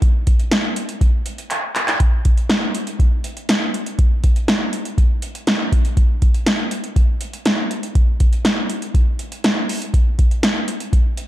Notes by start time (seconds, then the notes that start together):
0.02 kick, closed hi-hat
0.27 kick, closed hi-hat
0.39 closed hi-hat
0.52 snare, closed hi-hat
0.76 closed hi-hat
0.89 closed hi-hat
1.01 kick, closed hi-hat
1.26 closed hi-hat
1.38 closed hi-hat
1.50 clap, closed hi-hat
1.76 clap, closed hi-hat
1.88 clap, closed hi-hat
2.00 kick, closed hi-hat
2.25 kick, closed hi-hat
2.37 closed hi-hat
2.50 snare, closed hi-hat
2.75 closed hi-hat
2.87 closed hi-hat
3.00 kick, closed hi-hat
3.24 closed hi-hat
3.37 closed hi-hat
3.49 snare, closed hi-hat
3.74 closed hi-hat
3.86 closed hi-hat
3.99 kick, closed hi-hat
4.24 kick, closed hi-hat
4.36 closed hi-hat
4.48 snare, closed hi-hat
4.73 closed hi-hat
4.85 closed hi-hat
4.98 kick, closed hi-hat
5.22 closed hi-hat
5.35 closed hi-hat
5.47 snare, closed hi-hat
5.72 kick, closed hi-hat
5.85 closed hi-hat
5.97 kick, closed hi-hat
6.22 kick, closed hi-hat
6.34 closed hi-hat
6.46 snare, closed hi-hat
6.71 closed hi-hat
6.84 closed hi-hat
6.96 kick, closed hi-hat
7.21 closed hi-hat
7.33 closed hi-hat
7.45 snare, closed hi-hat
7.71 closed hi-hat
7.83 closed hi-hat
7.95 kick, closed hi-hat
8.20 kick, closed hi-hat
8.33 closed hi-hat
8.45 snare, closed hi-hat
8.70 closed hi-hat
8.82 closed hi-hat
8.94 kick, closed hi-hat
9.19 closed hi-hat
9.32 closed hi-hat
9.44 snare, closed hi-hat
9.69 open hi-hat
9.82 closed hi-hat
9.94 kick, closed hi-hat
10.19 kick, closed hi-hat
10.31 closed hi-hat
10.43 snare, closed hi-hat
10.68 closed hi-hat
10.80 closed hi-hat
10.93 kick, closed hi-hat
11.17 closed hi-hat